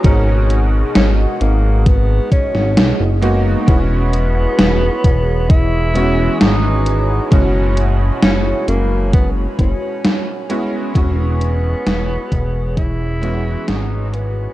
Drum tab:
HH |x-x-x-x-x-x-x-x-|x-x-x-x-x-x-x-x-|x-x-x-x-x-x-x-x-|x-x-x-x-x-x-x-x-|
SD |----o------oo---|----o-------o---|----o-------o---|----o-------o---|
BD |o-------o-o-----|o-----o-o-------|o-------o-o-----|o-----o-o-------|